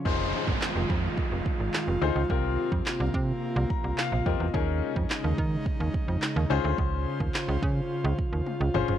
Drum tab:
CP |----x-------x---|----x-------x---|----x-------x---|----x-----------|
SD |----o-------o---|----o-------o---|----o-------o---|----o-----------|
T1 |----------------|----------------|----------------|------------o---|
T2 |----------------|----------------|----------------|--------------o-|
FT |----------------|----------------|----------------|---------------o|
BD |o--o--o-o-o-----|o--o--o---o---o-|o--o--o-o-o-----|o--o--o---o-----|